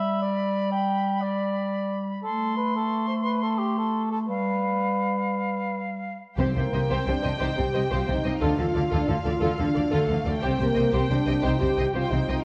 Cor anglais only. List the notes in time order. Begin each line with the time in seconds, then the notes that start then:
Already playing: E5
0.22 D5
0.72 G5
1.21 D5
2.23 A4
2.57 B4
2.76 A4
3.08 C5
3.24 B4
3.43 A4
3.59 G4
3.78 A4
4.12 A4
4.29 B4